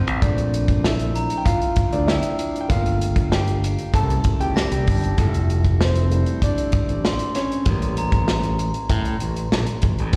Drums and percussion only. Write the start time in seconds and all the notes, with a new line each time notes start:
0.08 closed hi-hat
0.22 kick, closed hi-hat
0.38 closed hi-hat
0.54 closed hi-hat
0.68 kick, closed hi-hat
0.84 snare
0.99 closed hi-hat
1.15 closed hi-hat
1.30 closed hi-hat
1.46 kick, closed hi-hat
1.61 closed hi-hat
1.76 kick, closed hi-hat
1.92 closed hi-hat
2.08 snare
2.22 closed hi-hat
2.39 closed hi-hat
2.56 closed hi-hat
2.70 kick, closed hi-hat
2.86 closed hi-hat
3.01 closed hi-hat
3.16 kick, closed hi-hat
3.32 snare
3.47 closed hi-hat
3.64 closed hi-hat
3.78 closed hi-hat
3.94 kick, closed hi-hat
4.10 closed hi-hat
4.24 kick, closed hi-hat
4.41 closed hi-hat
4.57 snare
4.72 closed hi-hat
4.87 kick, open hi-hat
5.03 closed hi-hat
5.18 kick, closed hi-hat
5.34 closed hi-hat
5.50 closed hi-hat
5.64 kick, closed hi-hat
5.81 snare
5.95 closed hi-hat
6.11 closed hi-hat
6.26 closed hi-hat
6.42 kick, closed hi-hat
6.58 closed hi-hat
6.72 kick, closed hi-hat
6.89 closed hi-hat
7.05 snare
7.19 closed hi-hat
7.35 snare, closed hi-hat
7.52 closed hi-hat
7.65 kick, closed hi-hat
7.82 closed hi-hat
7.97 closed hi-hat
8.12 kick, closed hi-hat
8.28 snare
8.43 closed hi-hat
8.59 closed hi-hat
8.74 closed hi-hat
8.89 kick, closed hi-hat
9.05 closed hi-hat
9.20 closed hi-hat
9.36 closed hi-hat
9.52 snare
9.66 closed hi-hat
9.82 kick, closed hi-hat
9.98 closed hi-hat
10.13 closed hi-hat